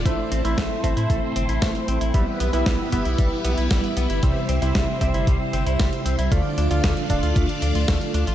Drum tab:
HH |x-xxx-xxx-xxxxxx|x-xxx-xxx-xxxxxx|x-xxx-xxx-xxxxxx|x-xxxxxxxxxxxxxx|
SD |----o-------o---|----o-------o---|----o-------o---|----o-------o---|
BD |o---o-o-o---o---|o---o-o-o---o---|o---o-o-o---o---|o---o-o-o---o---|